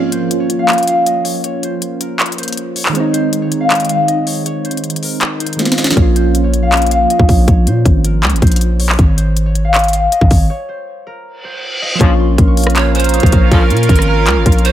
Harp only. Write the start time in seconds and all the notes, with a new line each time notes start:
Already playing: A#4 C#5 D#5
0.12 C5
0.40 C#5
0.59 F5
0.69 G5
0.88 F5
1.07 D#5
1.24 C#5
1.44 C#5
1.64 C5
2.01 A#4
2.39 C5
2.76 C#5
2.95 C#5
3.13 C5
3.42 C#5
3.61 F5
3.70 G5
3.89 F5
4.08 D#5
4.27 C#5
4.46 C#5
4.65 C5
5.03 A#4
5.40 C5
5.78 D#5
5.97 C#5
6.16 C5
6.44 C#5
6.63 F5
6.72 G5
6.91 F5
7.10 D#5
7.28 C#5
7.48 C#5
7.68 C5
8.04 A#4
8.42 C5
8.80 C#5
8.99 C#5
9.17 C5
9.46 C#5
9.65 F5
9.74 G5
9.93 F5
10.12 D#5
10.31 C#5
10.50 C#5
10.69 C5
11.07 A#4
11.44 C5
11.82 D#5
12.01 C#6
12.20 C6
12.48 C#6
12.66 F6
12.95 F6
13.14 D#6
13.32 C#6
13.52 C#6
13.71 C6
14.08 A#5
14.46 C6